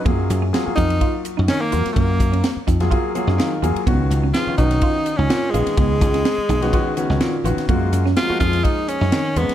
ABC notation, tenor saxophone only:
X:1
M:4/4
L:1/16
Q:"Swing 16ths" 1/4=126
K:Gb
V:1 name="Tenor saxophone"
z6 E4 z2 D B,3 | B,6 z8 z2 | z4 F2 E4- E D3 A,2- | A,12- A,2 z2 |
z4 F2 F2 E2 D4 C2 |]